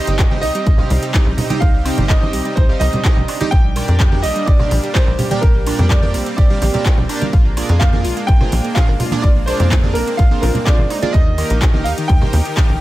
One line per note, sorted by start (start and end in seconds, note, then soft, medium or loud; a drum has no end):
0.00 0.15 C3 medium
0.00 3.49 C3 medium
0.00 3.49 C4 medium
0.00 0.15 D#4 medium
0.00 3.48 D#4 medium
0.00 0.15 G4 medium
0.00 3.48 G4 loud
0.00 0.15 C5 medium
0.00 0.15 D#5 medium
0.00 0.40 D#5 loud
0.00 0.15 G5 medium
0.07 0.44 G1 medium
0.07 closed hi-hat medium
0.19 0.25 G3 medium
0.19 kick loud
0.19 clap loud
0.19 closed hi-hat medium
0.31 0.43 C3 medium
0.31 0.37 G3 medium
0.31 0.43 D#4 medium
0.31 0.43 G4 medium
0.31 0.43 C5 medium
0.31 0.43 D#5 medium
0.31 0.43 G5 medium
0.31 high conga loud
0.41 0.51 C2 medium
0.41 0.49 D#4 medium
0.41 1.65 D#5 loud
0.41 open hi-hat loud
0.55 0.61 G3 medium
0.55 closed hi-hat medium
0.66 0.82 C2 loud
0.66 0.73 G3 medium
0.66 kick loud
0.66 closed hi-hat medium
0.78 0.91 C3 medium
0.78 0.91 D#4 medium
0.78 0.91 G4 medium
0.78 0.91 C5 medium
0.78 0.91 D#5 medium
0.78 0.91 F5 medium
0.78 low conga loud
0.78 high woodblock medium
0.90 0.98 C2 loud
0.90 0.97 G3 medium
0.90 open hi-hat loud
0.90 high conga medium
1.02 1.08 G3 medium
1.02 closed hi-hat medium
1.14 1.27 C3 medium
1.14 1.20 D#4 medium
1.14 1.27 D#4 medium
1.14 1.27 G4 medium
1.14 1.27 C5 medium
1.14 1.27 D#5 medium
1.14 1.27 A#5 medium
1.14 kick loud
1.14 clap loud
1.14 closed hi-hat medium
1.26 1.34 A#1 medium
1.26 1.32 G3 medium
1.38 1.44 D#4 medium
1.38 open hi-hat loud
1.38 low conga loud
1.50 1.62 C3 loud
1.50 1.56 G3 medium
1.50 1.62 D#4 medium
1.50 1.62 G4 medium
1.50 1.62 C5 medium
1.50 1.62 D#5 medium
1.50 1.62 G5 loud
1.50 closed hi-hat medium
1.50 high conga medium
1.60 1.91 C2 loud
1.60 1.68 D#4 medium
1.60 2.05 F5 loud
1.60 kick loud
1.60 closed hi-hat medium
1.74 1.80 G3 medium
1.85 2.06 C3 medium
1.85 1.92 C4 loud
1.85 2.06 D#4 medium
1.85 2.06 G4 medium
1.85 2.06 C5 medium
1.85 2.06 D#5 medium
1.85 2.06 G5 medium
1.85 open hi-hat loud
1.85 high woodblock medium
1.97 2.35 G1 medium
1.97 2.04 G3 medium
1.97 closed hi-hat medium
1.97 low conga medium
2.08 2.16 G3 medium
2.08 2.58 D#5 loud
2.08 kick loud
2.08 clap loud
2.08 closed hi-hat medium
2.22 2.34 C3 medium
2.22 2.34 D#4 medium
2.22 2.34 G4 medium
2.22 2.34 C5 medium
2.22 2.34 D#5 medium
2.22 2.34 G5 medium
2.22 high conga medium
2.33 2.41 C2 medium
2.33 2.39 G3 medium
2.33 open hi-hat loud
2.45 2.51 G3 medium
2.45 closed hi-hat medium
2.56 2.73 C2 loud
2.56 2.63 D#4 medium
2.56 2.78 C5 loud
2.56 kick loud
2.56 closed hi-hat medium
2.69 2.81 C3 medium
2.69 2.75 G3 medium
2.69 2.81 D#4 medium
2.69 2.81 G4 medium
2.69 2.81 C5 medium
2.69 2.81 D#5 medium
2.69 2.81 F5 medium
2.80 2.89 C2 loud
2.80 2.87 D#4 medium
2.80 3.54 D#5 loud
2.80 open hi-hat loud
2.80 high conga medium
2.93 2.99 G3 medium
2.93 closed hi-hat medium
2.93 low conga medium
3.05 3.17 C3 medium
3.05 3.11 D#4 medium
3.05 3.17 D#4 medium
3.05 3.17 G4 medium
3.05 3.17 C5 medium
3.05 3.17 D#5 medium
3.05 3.17 A#5 medium
3.05 kick loud
3.05 clap loud
3.05 closed hi-hat medium
3.17 3.24 A#1 medium
3.17 3.23 G3 medium
3.17 low conga medium
3.28 3.35 D4 medium
3.28 open hi-hat loud
3.28 high woodblock medium
3.41 3.46 G3 medium
3.41 3.51 D#4 loud
3.41 3.51 G4 medium
3.41 3.51 C5 medium
3.41 3.51 D#5 medium
3.41 3.51 G5 loud
3.41 closed hi-hat medium
3.41 high conga medium
3.51 3.81 A#1 loud
3.51 7.29 G3 medium
3.51 9.20 A#3 medium
3.51 5.41 D4 loud
3.51 3.58 G4 loud
3.51 4.19 G5 loud
3.51 kick loud
3.51 closed hi-hat medium
3.64 3.70 G3 medium
3.76 3.96 A#2 medium
3.76 3.82 G3 medium
3.76 3.96 D4 medium
3.76 3.96 G4 medium
3.76 3.96 A#4 medium
3.76 3.96 D5 medium
3.76 3.96 G5 medium
3.76 open hi-hat loud
3.76 high woodblock medium
3.88 4.25 F2 medium
3.88 closed hi-hat medium
4.00 4.06 G3 medium
4.00 kick loud
4.00 clap loud
4.00 closed hi-hat medium
4.12 4.24 A#2 medium
4.12 4.18 G3 medium
4.12 4.24 D4 medium
4.12 4.24 G4 medium
4.12 4.24 A#4 medium
4.12 4.24 D5 medium
4.12 4.24 G5 medium
4.12 high conga medium
4.22 4.32 A#1 medium
4.22 4.30 G4 loud
4.22 4.48 D#5 loud
4.22 open hi-hat loud
4.36 4.42 G3 medium
4.36 closed hi-hat medium
4.46 4.63 A#1 loud
4.46 4.54 G3 medium
4.46 4.96 D5 loud
4.46 kick loud
4.46 closed hi-hat medium
4.59 4.72 A#2 medium
4.59 4.72 D4 medium
4.59 4.72 G4 medium
4.59 4.72 A#4 medium
4.59 4.72 D5 medium
4.59 4.72 F5 medium
4.59 low conga medium
4.59 high woodblock medium
4.71 4.79 A#1 loud
4.71 4.77 G3 medium
4.71 open hi-hat loud
4.71 high conga medium
4.83 4.89 G3 medium
4.83 closed hi-hat medium
4.94 5.08 A#2 medium
4.94 5.08 D4 medium
4.94 5.08 G4 medium
4.94 5.01 G4 medium
4.94 5.08 A#4 medium
4.94 5.39 C5 loud
4.94 5.08 D5 medium
4.94 5.08 A#5 loud
4.94 kick loud
4.94 clap loud
4.94 closed hi-hat medium
5.07 5.15 A#1 medium
5.07 5.13 G3 medium
5.19 5.25 G4 medium
5.19 open hi-hat loud
5.19 low conga loud
5.31 5.43 A#2 loud
5.31 5.37 G3 medium
5.31 5.43 D4 medium
5.31 5.43 G4 medium
5.31 5.43 A#4 medium
5.31 5.43 D5 medium
5.31 5.43 G5 loud
5.31 closed hi-hat medium
5.31 high conga medium
5.41 5.72 A#1 loud
5.41 7.31 C4 medium
5.41 5.49 G4 medium
5.41 5.91 A#4 loud
5.41 kick loud
5.41 closed hi-hat medium
5.55 5.61 G3 medium
5.66 5.86 A#2 medium
5.66 5.87 D4 medium
5.66 5.73 D4 loud
5.66 5.87 G4 medium
5.66 5.86 A#4 medium
5.66 5.86 D5 medium
5.66 5.86 G5 medium
5.66 open hi-hat loud
5.66 high woodblock medium
5.79 6.16 F2 medium
5.79 5.85 G3 medium
5.79 closed hi-hat medium
5.79 low conga medium
5.89 5.96 G3 medium
5.89 6.35 D5 medium
5.89 kick loud
5.89 clap loud
5.89 closed hi-hat medium
6.02 6.15 A#2 medium
6.02 6.15 D4 medium
6.02 6.15 G4 medium
6.02 6.15 A#4 medium
6.02 6.15 D5 medium
6.02 6.15 G5 medium
6.02 high conga medium
6.14 6.22 A#1 medium
6.14 6.20 G3 medium
6.14 open hi-hat loud
6.26 6.32 G3 medium
6.26 closed hi-hat medium
6.37 6.54 A#1 loud
6.37 6.44 G4 medium
6.37 7.05 D5 medium
6.37 kick loud
6.37 closed hi-hat soft
6.50 6.62 A#2 medium
6.50 6.56 G3 medium
6.50 6.62 D4 medium
6.50 6.62 G4 medium
6.50 6.62 A#4 medium
6.50 6.62 D5 medium
6.50 6.62 F5 medium
6.62 6.70 A#1 loud
6.62 6.68 G4 medium
6.62 open hi-hat loud
6.62 high conga medium
6.74 6.94 A#2 medium
6.74 6.80 G3 medium
6.74 6.94 D4 medium
6.74 6.94 G4 medium
6.74 6.94 A#4 medium
6.74 6.94 D5 medium
6.74 6.94 G5 medium
6.74 closed hi-hat medium
6.74 low conga medium
6.86 6.92 F4 medium
6.86 kick loud
6.86 clap loud
6.86 closed hi-hat soft
6.98 7.05 A#1 medium
6.98 7.04 G3 medium
6.98 low conga medium
7.09 7.22 A#2 medium
7.09 7.22 D4 medium
7.09 7.16 D4 medium
7.09 7.22 G4 medium
7.09 7.22 A#4 medium
7.09 7.22 D5 medium
7.09 7.22 G5 loud
7.09 open hi-hat loud
7.09 high woodblock medium
7.22 7.27 G3 medium
7.22 closed hi-hat medium
7.22 high conga medium
7.33 7.62 A#1 loud
7.33 11.10 G#3 medium
7.33 11.10 D4 loud
7.33 7.39 F4 loud
7.33 kick loud
7.33 closed hi-hat medium
7.45 7.51 A#3 medium
7.57 7.77 A#2 medium
7.57 7.63 A#3 medium
7.57 7.77 D4 medium
7.57 7.77 F4 medium
7.57 7.77 G#4 medium
7.57 7.77 A#4 medium
7.57 7.77 D5 medium
7.57 open hi-hat loud
7.57 high woodblock medium
7.69 8.06 F2 medium
7.69 closed hi-hat medium
7.79 7.87 A#3 medium
7.79 8.29 F5 loud
7.79 kick loud
7.79 clap loud
7.79 closed hi-hat medium
7.93 8.05 A#2 medium
7.93 7.99 A#3 medium
7.93 8.05 D4 medium
7.93 8.05 F4 medium
7.93 8.05 G#4 medium
7.93 8.05 A#4 medium
7.93 8.05 D5 medium
7.93 high conga loud
8.05 8.13 A#1 medium
8.05 8.11 F4 loud
8.05 open hi-hat loud
8.17 8.23 A#3 medium
8.17 closed hi-hat medium
8.27 8.44 A#1 loud
8.27 8.77 G5 loud
8.27 kick loud
8.27 closed hi-hat medium
8.41 8.53 A#2 medium
8.41 8.53 D4 medium
8.41 8.53 F4 medium
8.41 8.53 G#4 medium
8.41 8.53 A#4 medium
8.41 8.53 C5 medium
8.41 low conga medium
8.41 high woodblock medium
8.52 8.60 A#1 loud
8.52 8.58 A#3 medium
8.52 open hi-hat loud
8.52 high conga medium
8.64 8.70 A#3 medium
8.64 closed hi-hat medium
8.75 8.89 A#2 medium
8.75 8.89 D4 medium
8.75 8.89 F4 medium
8.75 8.82 F4 medium
8.75 8.89 G#4 medium
8.75 8.89 A#4 medium
8.75 9.24 F5 loud
8.75 8.89 F5 medium
8.75 kick loud
8.75 clap loud
8.75 closed hi-hat medium
8.88 8.96 G#1 medium
8.88 8.94 A#3 medium
9.00 9.06 F4 medium
9.00 open hi-hat loud
9.00 low conga medium
9.11 9.24 A#2 loud
9.11 9.18 A#3 medium
9.11 9.24 D4 medium
9.11 9.24 F4 medium
9.11 9.24 G#4 medium
9.11 9.24 A#4 loud
9.11 9.24 D5 loud
9.11 closed hi-hat medium
9.11 high conga medium
9.22 9.53 A#1 loud
9.22 11.12 C4 medium
9.22 9.30 F4 medium
9.22 9.28 D5 loud
9.22 kick loud
9.22 closed hi-hat medium
9.36 9.42 A#3 medium
9.46 9.67 A#2 medium
9.46 9.67 D4 medium
9.46 9.54 D4 loud
9.46 9.67 F4 medium
9.46 9.67 G#4 medium
9.46 9.67 A#4 medium
9.46 9.96 C5 loud
9.46 9.67 D5 medium
9.46 open hi-hat loud
9.46 high woodblock medium
9.60 9.97 F2 medium
9.60 9.66 A#3 medium
9.60 closed hi-hat medium
9.60 low conga medium
9.71 9.77 A#3 medium
9.71 kick loud
9.71 clap loud
9.71 closed hi-hat medium
9.83 9.96 A#2 medium
9.83 9.96 D4 medium
9.83 9.96 F4 medium
9.83 9.96 G#4 medium
9.83 9.96 A#4 medium
9.83 9.96 D5 medium
9.83 high conga medium
9.94 10.03 A#1 medium
9.94 10.01 A#3 medium
9.94 10.19 A#4 loud
9.94 open hi-hat loud
10.07 10.13 A#3 medium
10.07 closed hi-hat medium
10.17 10.35 A#1 loud
10.17 10.25 F4 medium
10.17 10.43 F5 loud
10.17 kick loud
10.17 closed hi-hat medium
10.31 10.43 A#2 medium
10.31 10.37 A#3 medium
10.31 10.43 D4 medium
10.31 10.43 F4 medium
10.31 10.43 G#4 medium
10.31 10.43 A#4 medium
10.31 10.43 C5 medium
10.41 10.51 A#1 loud
10.41 10.49 F4 medium
10.41 10.67 A#4 medium
10.41 open hi-hat loud
10.41 high conga medium
10.54 10.61 A#3 medium
10.54 closed hi-hat medium
10.54 low conga medium
10.65 10.79 A#2 medium
10.65 10.79 D4 medium
10.65 10.79 F4 medium
10.65 10.73 F4 medium
10.65 10.79 G#4 medium
10.65 10.79 A#4 medium
10.65 11.15 D5 loud
10.65 10.79 F5 loud
10.65 kick loud
10.65 clap loud
10.65 closed hi-hat medium
10.78 10.86 G#1 medium
10.78 10.85 A#3 medium
10.78 low conga medium
10.90 10.96 D#4 medium
10.90 open hi-hat loud
10.90 high woodblock medium
11.02 11.08 A#3 medium
11.02 11.13 D4 loud
11.02 11.13 F4 medium
11.02 11.13 G#4 loud
11.02 11.13 A#4 medium
11.02 11.13 D5 loud
11.02 closed hi-hat medium
11.02 high conga medium
11.13 11.43 D#2 loud
11.13 12.81 D#3 medium
11.13 12.81 D#4 medium
11.13 11.20 D#4 loud
11.13 12.81 G4 medium
11.13 12.81 A#4 medium
11.13 11.87 D#5 loud
11.13 kick loud
11.13 closed hi-hat medium
11.26 11.32 D#3 medium
11.38 11.58 D#3 medium
11.38 11.44 D#3 medium
11.38 11.58 A#3 medium
11.38 11.58 D#4 medium
11.38 11.58 G4 medium
11.38 11.58 A#4 medium
11.38 11.58 D#5 medium
11.38 open hi-hat loud
11.38 high woodblock medium
11.50 11.87 A#1 medium
11.50 closed hi-hat medium
11.62 11.68 D#3 medium
11.62 kick loud
11.62 clap loud
11.62 closed hi-hat medium
11.74 11.86 D#3 medium
11.74 11.80 D#3 medium
11.74 11.86 A#3 medium
11.74 11.86 D#4 medium
11.74 11.86 G4 medium
11.74 11.86 A#4 medium
11.74 11.86 D#5 medium
11.74 high conga loud
11.84 11.94 D#2 medium
11.84 11.92 D#4 loud
11.84 11.90 F5 loud
11.84 open hi-hat loud
11.98 12.04 D#3 medium
11.98 closed hi-hat medium
12.08 12.25 D#2 loud
12.08 12.16 D#3 medium
12.08 12.81 G5 loud
12.08 kick loud
12.08 closed hi-hat medium
12.21 12.34 D#3 medium
12.21 12.34 A#3 medium
12.21 12.34 D#4 medium
12.21 12.34 G4 medium
12.21 12.34 A#4 medium
12.21 12.34 C5 medium
12.21 low conga medium
12.21 high woodblock medium
12.33 12.41 D#2 loud
12.33 12.39 D#3 medium
12.33 open hi-hat loud
12.33 high conga medium
12.45 12.51 D#3 medium
12.45 closed hi-hat medium
12.57 12.70 D#3 medium
12.57 12.70 A#3 medium
12.57 12.70 D#4 medium
12.57 12.63 D#4 medium
12.57 12.70 G4 medium
12.57 12.70 A#4 medium
12.57 12.70 F5 medium
12.57 kick loud
12.57 clap loud
12.57 closed hi-hat medium
12.69 12.77 A#1 medium
12.69 12.75 D#3 medium